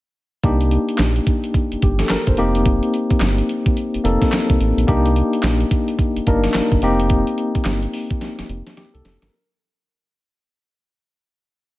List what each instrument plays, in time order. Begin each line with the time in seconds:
0.44 analog synth bass C2, tine electric piano A#3 D4 D#4 G4, kick, closed hi-hat
0.61 closed hi-hat
0.71 closed hi-hat
0.89 closed hi-hat
0.98 analog synth bass A#1, snare, clap, closed hi-hat
1.16 closed hi-hat
1.27 kick, closed hi-hat
1.44 closed hi-hat
1.54 kick, closed hi-hat
1.72 analog synth bass G1, closed hi-hat
1.82 analog synth bass G1, tine electric piano G4, kick, closed hi-hat
1.99 tine electric piano A4, snare, closed hi-hat
2.09 analog synth bass G1, tine electric piano A#4, snare, clap, closed hi-hat
2.27 analog synth bass G1, tine electric piano C5, kick, closed hi-hat
2.37 analog synth bass F1, tine electric piano A#3 C4 D#4 G4, closed hi-hat
2.55 closed hi-hat
2.66 kick, closed hi-hat
2.83 closed hi-hat
2.94 closed hi-hat
3.10 kick, closed hi-hat
3.20 analog synth bass G1, snare, clap, closed hi-hat
3.38 closed hi-hat
3.49 closed hi-hat
3.66 kick, closed hi-hat
3.77 closed hi-hat
3.94 analog synth bass F1, closed hi-hat
4.04 analog synth bass F1, tine electric piano A#3 C4 D#4 A4, closed hi-hat
4.22 kick, snare, closed hi-hat
4.32 snare, clap, closed hi-hat
4.50 analog synth bass C2, kick, closed hi-hat
4.60 analog synth bass A1, closed hi-hat
4.77 analog synth bass A#1, closed hi-hat
4.87 analog synth bass C2, tine electric piano A#3 D4 D#4 G4, kick, closed hi-hat
5.06 closed hi-hat
5.16 closed hi-hat
5.33 closed hi-hat
5.43 analog synth bass A#1, snare, clap, closed hi-hat
5.61 closed hi-hat
5.71 kick, closed hi-hat
5.88 closed hi-hat
5.99 kick, closed hi-hat
6.16 analog synth bass G1, closed hi-hat
6.27 analog synth bass G1, tine electric piano A#3 D4 D#4 A#4, kick, closed hi-hat
6.44 snare, closed hi-hat
6.54 analog synth bass G1, snare, clap, closed hi-hat
6.72 analog synth bass G1, kick, closed hi-hat
6.82 analog synth bass F1, tine electric piano A#3 C4 D#4 G4, closed hi-hat
7.00 closed hi-hat
7.10 kick, closed hi-hat
7.27 closed hi-hat
7.38 closed hi-hat
7.55 kick, closed hi-hat
7.65 analog synth bass G1, snare, clap, closed hi-hat
7.83 closed hi-hat
7.93 open hi-hat
8.10 kick, closed hi-hat
8.21 snare, closed hi-hat
8.39 analog synth bass F1, snare, closed hi-hat
8.49 analog synth bass F1, closed hi-hat
8.67 snare, closed hi-hat
8.77 tine electric piano G4, snare, closed hi-hat
8.94 analog synth bass C2, tine electric piano A4, closed hi-hat
9.05 analog synth bass F1, snare, open hi-hat
9.22 analog synth bass G1, tine electric piano A#4, snare, closed hi-hat